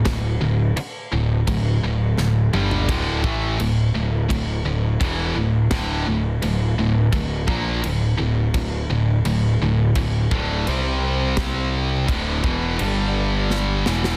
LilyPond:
<<
  \new Staff \with { instrumentName = "Distorted electric guitar" } { \clef bass \time 4/4 \key g \dorian \tempo 4 = 85 <d, a,>8 <d, a,>8 r8 <d, a,>8 <d, a,>8 <d, a,>8 <d, a,>8 <g, d g>8 | <d, a, d>8 <a, e a>8 <d, a,>8 <d, a,>8 <d, a,>8 <d, a,>8 <e, b, e>8 <d, a,>8 | <d, a, d>8 <d, a,>8 <d, a,>8 <d, a,>8 <d, a,>8 <bes, f bes>8 <d, a,>8 <d, a,>8 | <d, a,>8 <d, a,>8 <d, a,>8 <d, a,>8 <d, a,>8 <d, a, d>8 <c g c'>4~ |
<c g c'>4 <d, a, d>8 <e, b, e>8 <g, d g>4. <e, b, e>8 | }
  \new Staff \with { instrumentName = "Picked electric bass" } { \clef bass \time 4/4 \key g \dorian d,,8 d,,8 r8 d,,8 d,,8 d,,8 d,,8 g,,8 | d,,8 a,,8 d,,8 d,,8 d,,8 d,,8 e,,8 d,,8 | d,,8 d,,8 d,,8 d,,8 d,,8 bes,,8 d,,8 d,,8 | d,,8 d,,8 d,,8 d,,8 d,,8 d,,8 c,4~ |
c,4 d,,8 e,,8 g,,4. e,,8 | }
  \new DrumStaff \with { instrumentName = "Drums" } \drummode { \time 4/4 <cymc bd sn>4 cymc4 <cymc bd>4 sn8 toml16 tomfh16 | <cymc bd>8 bd8 cymc4 <cymc bd>4 <cymc bd>4 | <cymc bd sn>4 cymc4 <cymc bd>8 bd8 cymc4 | <cymc bd>4 cymc4 <cymc bd>8 bd8 cymc4 |
<cymc bd sn>4 <cymc bd>8 bd8 cymc4 sn8 sn16 sn16 | }
>>